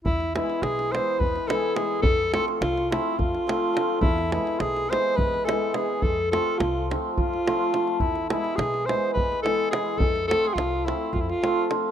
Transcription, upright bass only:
\new Staff \with { instrumentName = "Upright bass" } { \clef bass \time 7/8 \tempo 4 = 106 e,4 b,,4 e,8 r4 | f,4 c,4 f,8 r4 | e,4 b,,4 e,8 r4 | f,4 c,4 f,8 r4 |
e,4 b,,4 e,8 r4 | f,4 c,4 f,8 r4 | }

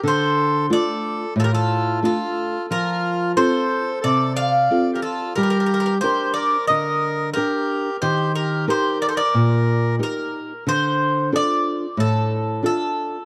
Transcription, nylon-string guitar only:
\new Staff \with { instrumentName = "Nylon-string guitar" } { \time 4/4 \key d \phrygian \tempo 4 = 90 d4 <a d' f'>4 a,4 <a d' f'>4 | f4 <c' f' a'>4 c4 <c' f' a'>4 | g4 <d' g' bes'>4 d4 <d' g' bes'>4 | ees4 <ees' g' bes'>4 bes,4 <ees' g' bes'>4 |
d4 <d' f' a'>4 a,4 <d' f' a'>4 | }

